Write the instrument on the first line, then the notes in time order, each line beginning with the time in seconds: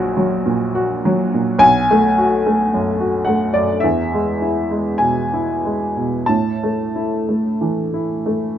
upright piano
Already playing: A#1 A#2 F#3 F#4 C#5 D5
0.17 F#3
0.46 A#2
0.75 F#4
1.05 F#3
1.34 A#2
1.59 B1 G#5
1.91 A3
2.18 F#4
2.46 A3
2.74 F#2
3.00 F#4
3.25 A3 F#5
3.54 F#2 D5
3.80 E2 E5
4.13 G#3
4.42 E4
4.71 G#3
4.98 B2 G#5
5.34 E4
5.65 G#3
5.97 B2
6.26 A2 A5
6.63 A3
6.96 E4
7.29 A3
7.61 E3
7.94 E4
8.26 A3